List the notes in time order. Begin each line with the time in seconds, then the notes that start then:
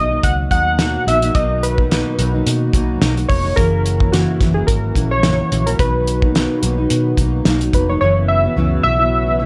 Already playing: B1 B2 D#3 F#3 A#3 F#4 D#5
0.10 F#3 A#3 D#4
0.23 C#2 F#5, kick, closed hi-hat
0.51 D#2 B2 F#3 A#3 D#4 F#5, kick, closed hi-hat
0.78 B2 F#3 A#3 D#4, snare, closed hi-hat
1.06 A#1 B2 F#3 A#3 D#4 E5, closed hi-hat
1.22 F#3 A#3 D#4, closed hi-hat
1.35 B1 B2 F#3 A#3 D#4 D#5, kick, closed hi-hat
1.63 B4, closed hi-hat
1.78 F#3 A#3 D#4, kick
1.91 B2 F#3 A#3 D#4, snare, closed hi-hat
2.18 B1 B2 F#3 A#3 D#4, closed hi-hat
2.33 F#3 A#3 D#4
2.46 B2, closed hi-hat
2.73 B1 B2 F#3 A#3 D#4, kick, closed hi-hat
3.01 B1 B2 F#3 A#3 D#4, snare, closed hi-hat
3.17 F#3 A#3 D#4, closed hi-hat
3.28 F1 B2 F#3 A#3 D#4 C#5, kick, open hi-hat
3.44 F#3 A#3 D#4
3.56 F#1 F#2 C#3 E3 F#3 A#3 C#4 E4 A#4, kick, closed hi-hat
3.86 closed hi-hat
4.00 E3 A#3 E4, kick
4.12 F#2 C#3 E3 A#3 E4 F#4, snare, closed hi-hat
4.40 F#1 C#3 E3 A#3 E4, kick, snare, closed hi-hat
4.54 E3 A#3 E4 G#4
4.67 G#1 A#4, kick, closed hi-hat
4.95 A#1 C#3 E3 A#3 E4, kick, closed hi-hat
5.11 C#5
5.23 F#2 C#3 E3 A#3 E4, snare, closed hi-hat
5.38 E3 A#3 E4
5.51 A#1 C#3 E3 A#3 E4, closed hi-hat
5.66 E3 A#3 E4 A#4, closed hi-hat
5.79 B1 B2 D#3 F#3 B3 D#4 B4, kick, closed hi-hat
6.07 closed hi-hat
6.22 F#3 A#3 D#4, kick
6.35 B2 F#3 A#3 D#4, snare, closed hi-hat
6.62 B1 B2 F#3 A#3 D#4, closed hi-hat
6.78 F#3 D#4
6.90 B2, closed hi-hat
7.17 B1 B2 F#3 A#3 D#4, kick, closed hi-hat
7.45 B1 B2 F#3 A#3 D#4, snare, closed hi-hat
7.61 F#3 A#3 D#4, closed hi-hat
7.73 F1 B2 F#3 A#3 D#4 B4, kick, closed hi-hat
7.89 F#3 A#3 D#4 C#5
8.01 F#1 F#2 C#3 E3 F#3 B3 E4 F#4 C#5
8.28 E5
8.44 E3 B3 E4
8.56 C#2 F#2 C#3 E3 B3 E4
8.83 B1 C#3 E3 B3 E4 E5
8.99 E3 B3 E4
9.27 E3 B3 E4
9.39 C#3 E3 B3 E4